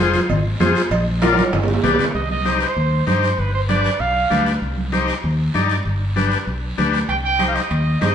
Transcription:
Already playing: F1
0.00 F4 G#4 C5
0.14 high conga, short guiro
0.29 G#1, cowbell, high conga, low conga, long guiro
0.60 F2 F4 G#4 C5, high conga, low timbale, short guiro
0.75 short guiro
0.91 A#1, cowbell, long guiro
1.07 high conga
1.22 F4 A#4 D5, high conga, high timbale, short guiro
1.33 high timbale
1.38 high conga, short guiro
1.43 high timbale
1.53 G1, cowbell, low conga, high timbale, long guiro
1.63 low timbale
1.68 low conga
1.74 low timbale
1.83 B1 G4 B4 D5, low conga, low timbale, short guiro
1.94 low timbale
1.99 low conga, short guiro
2.04 low timbale
2.14 C2 D#5, long guiro
2.30 D#5, high conga
2.45 D#4 G4 C5, high conga, short guiro
2.61 C5, short guiro
2.76 D#2, long guiro
3.07 G2 D#4 G4 C5, high conga, short guiro
3.23 short guiro
3.38 G1 B4, long guiro
3.54 C5
3.69 D4 G4 B4 D5, high conga, short guiro
3.84 short guiro
4.00 B1 F5, long guiro
4.30 D2 D4 G4 B4, high conga, short guiro
4.46 short guiro
4.62 C2, long guiro
4.77 high conga
4.92 D#4 G4 C5, high conga, short guiro
5.08 short guiro
5.23 D#2, long guiro
5.54 G2 D#4 G4 D5, high conga, short guiro
5.70 short guiro
5.85 G1, long guiro
6.16 D4 G4 B4, high conga, short guiro
6.32 short guiro
6.47 B1, long guiro
6.78 D2 D4 G4 B4, high conga, short guiro
6.93 short guiro
7.08 C2 G5, high timbale, long guiro
7.25 G5
7.39 D#4 G4 C5, high conga, high timbale, short guiro
7.48 F5
7.55 D#5, high timbale, short guiro
7.71 D#2, high timbale, long guiro
8.01 G2 D#4 G4 C5 D#5, high conga, high timbale, low timbale, short guiro

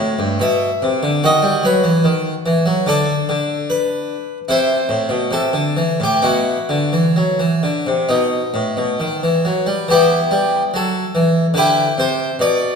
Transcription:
Already playing: A2 E4 E5
0.19 G2
0.40 B2 E5
0.82 C3
1.03 D3
1.24 D#3 F#4 D#5
1.42 G3
1.63 F#3 B4
1.84 E3
2.04 D#3
2.46 E3
2.66 F#3
2.87 D3 D4 A4
3.29 D3
3.70 B4
4.48 C3 E4 C5
4.89 A2
5.09 B2
5.31 C3 A4
5.53 D3
5.77 E3
6.00 A2 G4
6.22 B2 E4 F#4
6.69 D3
6.93 E3
7.16 F#3
7.39 E3
7.63 D3
7.87 C3
8.09 B2 D#4
8.54 A2
8.77 B2
9.00 D#3
9.23 E3
9.45 F#3
9.67 G3
9.88 E3 B3 E4 G4
10.31 G3
10.74 F#3 A4
11.15 E3
11.54 D3 E4 G4 B4
11.98 C3 C5
12.39 B2 D5

